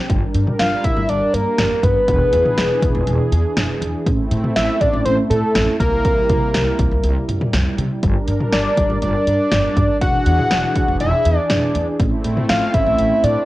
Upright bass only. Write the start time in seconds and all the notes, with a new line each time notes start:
0.10 G1
0.35 G2
0.59 G1
0.84 G1
0.97 G1
1.09 G1
1.34 G2
1.59 G1
1.83 G2
2.08 E1
2.33 E2
2.58 E1
2.82 E1
2.95 E1
3.07 E1
3.32 E2
3.57 E1
3.82 E2
4.06 A1
4.31 A2
4.56 A1
4.81 A1
4.93 A1
5.05 A1
5.30 A2
5.55 A1
5.80 C2
6.29 C3
6.54 C2
6.79 C2
6.91 C2
7.04 C2
7.29 C3
7.53 C2
7.78 C3
8.03 G1
8.28 G2
8.53 G1
8.77 G1
8.90 G1
9.02 G1
9.27 G2
9.52 G1
9.77 G2
10.01 E1
10.26 E2
10.51 E1
10.76 E1
10.88 E1
11.01 E1
11.25 E2
11.50 E1
11.75 E2
12.00 A1
12.25 A2
12.49 A1
12.74 A1
12.87 A1
12.99 A1
13.24 A2